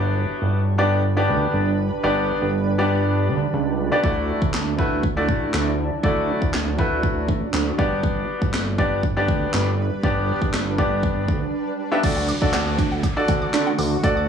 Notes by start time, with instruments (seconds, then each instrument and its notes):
Already playing: analog synth bass G1, ambient pad G3 D4 B4, grand piano B3 D4 G4 D5
0.42 analog synth bass G1
0.78 grand piano B3 D4 G4 D5
1.17 grand piano B3 D4 G4 D5
1.29 analog synth bass D2
1.54 analog synth bass G1
1.78 ambient pad D4
2.03 analog synth bass G1, grand piano B3 D4 G4 D5
2.42 analog synth bass G1
2.78 grand piano B3 D4 G4 D5
3.29 analog synth bass D2
3.54 analog synth bass C#2
3.92 grand piano B3 D4 G4 D5
4.03 analog synth bass D2, ambient pad F#3 D4 E4, grand piano A3 E4 F#4 D5, kick
4.42 analog synth bass D2, kick
4.54 snare, clap
4.78 grand piano A3 E4 F#4 B4, kick
5.03 kick
5.17 grand piano A3 E4 F#4 D5
5.29 analog synth bass A1, kick
5.54 analog synth bass D2, snare, clap
6.03 analog synth bass D2, grand piano A3 E4 F#4 D5, ambient pad F#4, kick
6.42 analog synth bass D2, kick
6.54 snare, clap
6.78 grand piano A3 E4 F#4 B4, kick
7.03 kick
7.28 analog synth bass A1, kick
7.53 analog synth bass D2, snare, clap
7.78 analog synth bass G1, ambient pad G3 D4 B4, grand piano B3 D4 G4 D5, kick
8.04 kick
8.42 analog synth bass G1, kick
8.54 snare, clap
8.78 grand piano B3 D4 G4 D5, kick
9.03 kick
9.17 grand piano B3 D4 G4 D5
9.29 analog synth bass D2, kick
9.54 analog synth bass G1, snare, clap
9.79 ambient pad D4
10.03 analog synth bass G1, grand piano B3 D4 G4 D5, kick
10.42 analog synth bass G1, kick
10.54 snare, clap
10.78 grand piano B3 D4 G4 D5, kick
11.03 kick
11.28 analog synth bass D2, kick
11.92 grand piano B3 D4 G4 E5
12.03 analog synth bass D2, ambient pad D3 A3 F#4, synth arpeggio sound D4, grand piano F#4 A4 D5, kick, closed hi-hat, crash, downlifter
12.17 synth arpeggio sound F#5
12.28 synth arpeggio sound D6, closed hi-hat
12.42 analog synth bass D2, synth arpeggio sound D4, grand piano F#4 A4 D5, kick
12.53 synth arpeggio sound F#5, snare, clap, closed hi-hat
12.67 synth arpeggio sound D6
12.78 synth arpeggio sound D4, kick, closed hi-hat
12.92 synth arpeggio sound F#5
13.03 synth arpeggio sound D6, kick, closed hi-hat
13.16 synth arpeggio sound D4, grand piano F#4 A4 D5
13.28 analog synth bass D2, synth arpeggio sound F#5, kick, closed hi-hat
13.42 synth arpeggio sound D6
13.54 analog synth bass D3, synth arpeggio sound D4, snare, clap, closed hi-hat
13.67 synth arpeggio sound F#5
13.79 analog synth bass D2, synth arpeggio sound D6, open hi-hat
14.03 analog synth bass D2, grand piano F#4 A4 D5, synth arpeggio sound F#5, kick, closed hi-hat
14.17 synth arpeggio sound D6